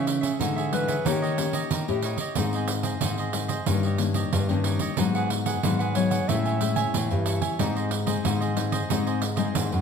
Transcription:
Already playing: nylon-string guitar C#3 E3 G#3 D#4
0.07 muted cavaquinho stroke, pandeiro
0.21 cavaquinho G#4 C#5 E5, pandeiro
0.39 nylon-string guitar G#2 D3 E3 G#3 D#4, cavaquinho D#4 G#4 C#5 E5, pandeiro
0.56 cavaquinho G#4 C#5 E5, pandeiro
0.72 nylon-string guitar E3 G#3 D#4, clarinet B4, pandeiro
0.88 cavaquinho G#4 C#5 E5, pandeiro
1.05 nylon-string guitar D#3 A#3 C#4 G4, cavaquinho D#4 G4 C#5 D#5, clarinet C#5, pandeiro
1.22 cavaquinho G4 C#5 D#5, pandeiro
1.37 nylon-string guitar A#3 C#4 G4, muted cavaquinho stroke, pandeiro
1.53 cavaquinho G4 C#5 D#5, pandeiro
1.70 nylon-string guitar D#3, pandeiro
1.88 nylon-string guitar A2 C#4 G4, pandeiro
2.02 cavaquinho D#4 G4 C#5 D#5, pandeiro
2.18 cavaquinho G4 C#5 D#5, pandeiro
2.35 nylon-string guitar G#2 D#3 G#3 C4, cavaquinho D#4 G#4 C5 D#5, pandeiro
2.53 cavaquinho G#4 C5 D#5, pandeiro
2.68 muted cavaquinho stroke, pandeiro
2.83 cavaquinho G#4 C5 D#5, pandeiro
3.01 nylon-string guitar G#2 D#3 G#3 C4, cavaquinho D#4 G#4 C5 D#5, pandeiro
3.18 cavaquinho G#4 C5 D#5, pandeiro
3.33 nylon-string guitar D#3 G#3 C4, pandeiro
3.48 cavaquinho G#4 C5 D#5, pandeiro
3.66 nylon-string guitar G2 D#3 A#3 C#4, cavaquinho D#4 G4 C#5 D#5, pandeiro
3.83 cavaquinho G4 C#5 D#5, pandeiro
3.98 nylon-string guitar D#3 A#3 C#4, muted cavaquinho stroke, pandeiro
4.14 cavaquinho G4 C#5 D#5, pandeiro
4.33 nylon-string guitar G2, pandeiro
4.48 nylon-string guitar G2 D#3 A#3 C#4, pandeiro
4.64 cavaquinho D#4 G4 C#5 D#5, pandeiro
4.79 cavaquinho G4 C#5 D#5, pandeiro
4.97 nylon-string guitar G#2 F#3 B3 D#4, cavaquinho D#4 G#4 B4 F#5, pandeiro
5.15 cavaquinho G#4 B4 F#5, pandeiro
5.30 muted cavaquinho stroke, pandeiro
5.46 cavaquinho G#4 B4 F#5, pandeiro
5.63 nylon-string guitar G#2 D#3 F#3 B3 D#4, cavaquinho D#4 G#4 B4 F#5, pandeiro
5.79 cavaquinho G#4 B4 F#5, pandeiro
5.95 nylon-string guitar F#3 B3 D#4, clarinet C#5, pandeiro
6.11 cavaquinho G#4 B4 F#5, pandeiro
6.28 nylon-string guitar A2 G#3 C#4 E4, cavaquinho A4 C#5 E5 G#5, clarinet E5, pandeiro
6.45 cavaquinho C#5 E5 G#5, pandeiro
6.60 nylon-string guitar G#3 C#4 E4, muted cavaquinho stroke, pandeiro
6.76 cavaquinho C#5 E5 G#5, pandeiro
6.94 nylon-string guitar A2 E3, pandeiro
7.11 nylon-string guitar G2 C#4 E4, pandeiro
7.26 cavaquinho A4 C#5 E5 G#5, pandeiro
7.41 cavaquinho C#5 E5 G#5, pandeiro
7.59 nylon-string guitar G#2 G#3 C4 D#4, cavaquinho D#4 G#4 C5 D#5, pandeiro
7.76 cavaquinho G#4 C5 D#5, pandeiro
7.91 muted cavaquinho stroke, pandeiro
8.06 nylon-string guitar G#3 C4 D#4, cavaquinho G#4 C5 D#5, pandeiro
8.24 nylon-string guitar G#2 D#3, cavaquinho D#4 G#4 C5 D#5, pandeiro
8.41 cavaquinho G#4 C5 D#5, pandeiro
8.56 nylon-string guitar G#3 C4 D#4, pandeiro
8.72 cavaquinho G#4 C5 D#5, pandeiro
8.89 nylon-string guitar G#2 G#3 C4 D#4, cavaquinho D#4 G#4 C5 D#5, pandeiro
9.06 cavaquinho G#4 C5 D#5, pandeiro
9.22 muted cavaquinho stroke, pandeiro
9.36 nylon-string guitar G#3 C4 D#4, cavaquinho G#4 C5 D#5, pandeiro
9.55 nylon-string guitar G#2 D#3, pandeiro
9.72 nylon-string guitar F#2, pandeiro

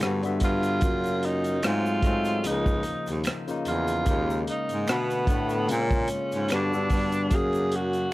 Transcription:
0.00 baritone saxophone G2, tine electric piano D3 G3 B3 F#4, finger snap, cross-stick, shaker
0.23 baritone saxophone G2, tine electric piano D3 G3 B3 E5, closed hi-hat, shaker
0.40 baritone saxophone G2, kick, closed hi-hat, shaker
0.44 tenor saxophone F4
0.63 closed hi-hat, shaker
0.81 baritone saxophone F#2, tine electric piano C#3 F#3 A#3, kick, closed hi-hat, shaker
0.85 tine electric piano F4
1.04 closed hi-hat, shaker
1.23 tenor saxophone D#4, closed hi-hat
1.44 closed hi-hat, shaker
1.63 baritone saxophone G#2, tine electric piano F#3 G#3 A3 C4, tenor saxophone F4, finger snap, cross-stick, closed hi-hat, shaker
1.86 shaker
2.02 baritone saxophone G#2, tine electric piano F#3 G#3 A3, kick, closed hi-hat, shaker
2.07 tine electric piano C4
2.25 closed hi-hat, shaker
2.44 baritone saxophone C#2, tine electric piano C#3 F3 A#3 D#4, tenor saxophone D#4, closed hi-hat, shaker
2.66 kick, shaker
2.83 baritone saxophone D#2, closed hi-hat, shaker
3.07 baritone saxophone D#2, closed hi-hat, shaker
3.24 finger snap, cross-stick, closed hi-hat, shaker
3.47 tine electric piano C#3 A#3 D#4 F4, closed hi-hat, shaker
3.65 baritone saxophone E2, tenor saxophone F4, closed hi-hat, shaker
3.88 closed hi-hat, shaker
4.06 baritone saxophone D#2, tine electric piano C#3 G#3 A#3 D#4, kick, closed hi-hat, shaker
4.30 shaker
4.47 tenor saxophone D#4, closed hi-hat
4.69 baritone saxophone G#2, closed hi-hat, shaker
4.87 baritone saxophone B2, tine electric piano D3 A3 B3 F#4, finger snap, cross-stick, closed hi-hat, shaker
4.91 tenor saxophone B3
5.10 closed hi-hat, shaker
5.27 baritone saxophone A2, tine electric piano D3 A3 B3 D4, kick, closed hi-hat, shaker
5.49 closed hi-hat, shaker
5.67 baritone saxophone A#2, tine electric piano C#3 G#3 A#3 F4, closed hi-hat, shaker
5.72 tenor saxophone C#4
5.91 kick, shaker
6.08 baritone saxophone G#2, closed hi-hat, shaker
6.32 baritone saxophone G#2, closed hi-hat, shaker
6.48 baritone saxophone G2, tine electric piano D3 G3 B3 F#4, finger snap, cross-stick, closed hi-hat, shaker
6.54 tenor saxophone D4
6.71 baritone saxophone G2, tine electric piano D3 G3 B3 A4, shaker
6.89 baritone saxophone G2, kick, open hi-hat, shaker
7.12 closed hi-hat, shaker
7.30 baritone saxophone F#2, tine electric piano C#3 F#3 A#3 F5, kick, closed hi-hat, shaker
7.35 tenor saxophone G#4
7.53 closed hi-hat, shaker
7.72 closed hi-hat
7.76 tenor saxophone F#4
7.93 closed hi-hat, shaker

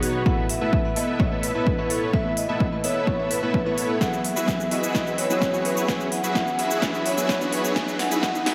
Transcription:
Already playing: clean electric guitar B2 F#3 B3 D#4 B4, supersaw synth B3 D#4 F#4 B4 C#5, riser
0.03 vibraphone F#4, open hi-hat
0.25 clean electric guitar A2 A3 B3 E4 B4, supersaw synth B3 E4 A4 B4 E5, vibraphone F#5, kick
0.49 vibraphone E5, open hi-hat
0.60 clean electric guitar A2 A3 B3 E4 B4, supersaw synth B3 E4 A4 B4 E5
0.73 kick
0.84 clean electric guitar A2 A3 B3 E4 B4
0.96 supersaw synth B3 E4 A4 B4 E5, vibraphone D#5, open hi-hat
1.19 clean electric guitar A2 A3 B3 E4 C#5, kick
1.31 supersaw synth B3 E4 A4 B4 E5
1.43 vibraphone B4, open hi-hat
1.54 clean electric guitar A2 A3 B3 E4 B4, supersaw synth B3 E4 A4 B4 E5
1.67 kick
1.78 clean electric guitar A2 A3 B3 E4 B4, supersaw synth B3 E4 A4 B4 C#5
1.90 vibraphone A4, open hi-hat
2.13 clean electric guitar A2 A3 B3 E4 B4, supersaw synth B3 E4 A4 B4 E5, vibraphone E5, kick
2.37 vibraphone D#5, open hi-hat
2.48 clean electric guitar A2 A3 B3 E4 B4, supersaw synth B3 E4 A4 B4 E5
2.60 kick
2.71 clean electric guitar A2 A3 B3 E4 B4
2.84 supersaw synth B3 E4 A4 B4 E5, vibraphone C#5, open hi-hat
3.07 clean electric guitar A2 A3 B3 E4 C#5, kick
3.19 supersaw synth B3 E4 A4 B4 E5
3.31 vibraphone B4, open hi-hat
3.42 clean electric guitar A2 A3 B3 E4 B4, supersaw synth B3 E4 A4 B4 E5
3.54 kick
3.65 clean electric guitar A2 A3 B3 E4 B4, supersaw synth B3 E4 A4 B4 C#5
3.78 vibraphone A4, open hi-hat
4.00 clean electric guitar F#3 B3 E4 G#4, supersaw synth E4 F#4 G#4 B4 E5, vibraphone F#5, kick, snare, shaker
4.13 shaker
4.25 vibraphone E5, open hi-hat
4.36 clean electric guitar F#3 B3 E4 G#4, supersaw synth E4 F#4 G#4 B4 E5, shaker
4.48 kick, snare, shaker
4.59 clean electric guitar F#3 B3 E4 G#4, shaker
4.71 supersaw synth E4 F#4 G#4 B4 E5, vibraphone D#5, open hi-hat
4.84 shaker
4.94 clean electric guitar F#3 B3 E4 B4, kick, snare, shaker
5.06 supersaw synth E4 F#4 G#4 B4 E5, shaker
5.18 vibraphone C#5, open hi-hat
5.29 clean electric guitar F#3 B3 E4 G#4, supersaw synth E4 F#4 G#4 B4 E5, shaker
5.42 kick, snare, shaker
5.53 clean electric guitar F#3 B3 E4 G#4, supersaw synth E4 F#4 G#4 B4 C#5, shaker
5.65 vibraphone B4, open hi-hat
5.77 shaker
5.88 clean electric guitar B3 E4 G#4, supersaw synth E4 F#4 G#4 B4, vibraphone G#5, kick, snare, shaker
6.01 shaker
6.12 vibraphone F#5, open hi-hat
6.23 clean electric guitar F#3 B3 E4 G#4, supersaw synth E4 F#4 G#4 B4 E5, shaker
6.35 kick, snare, shaker
6.46 clean electric guitar F#3 B3 E4 G#4, shaker
6.59 supersaw synth E4 F#4 G#4 B4 E5, vibraphone E5, open hi-hat
6.71 shaker
6.82 clean electric guitar F#3 B3 E4 B4, kick, snare, shaker
6.94 supersaw synth E4 F#4 G#4 B4 E5, shaker
7.06 vibraphone C#5, open hi-hat
7.17 clean electric guitar F#3 B3 E4 G#4, supersaw synth E4 F#4 G#4 B4 E5, shaker
7.29 kick, snare, shaker
7.40 clean electric guitar F#3 B3 E4 G#4, supersaw synth E4 F#4 G#4 B4 C#5, shaker
7.53 vibraphone B4, open hi-hat
7.65 shaker
7.75 clean electric guitar F#3 B3 E4 G#4, supersaw synth E4 F#4 G#4 E5, vibraphone G#5, kick, snare, shaker
7.88 shaker
7.99 vibraphone F#5, snare, open hi-hat
8.11 clean electric guitar F#3 B3 E4 G#4, supersaw synth E4 F#4 G#4 B4 E5, shaker
8.23 kick, snare, shaker
8.34 clean electric guitar F#3 B3 E4 G#4, shaker
8.46 supersaw synth E4 F#4 G#4 B4 E5, vibraphone E5, snare, open hi-hat

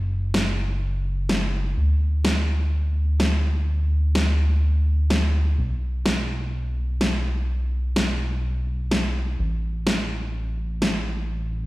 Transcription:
Already playing: analog synth bass F#1
0.34 snare
1.29 snare
1.77 analog synth bass D2
2.25 snare
3.20 snare
4.15 snare
5.10 snare
5.58 analog synth bass B1
6.06 snare
7.01 snare
7.96 snare
8.91 snare
9.39 analog synth bass A1
9.87 snare
10.82 snare

